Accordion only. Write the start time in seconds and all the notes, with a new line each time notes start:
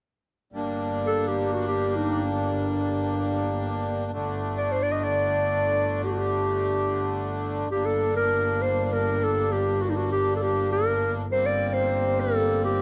0.53 G3 A#3 D4
4.12 D3 A3 D4
7.71 G3 A#3 D4
11.29 G3 A#3 C4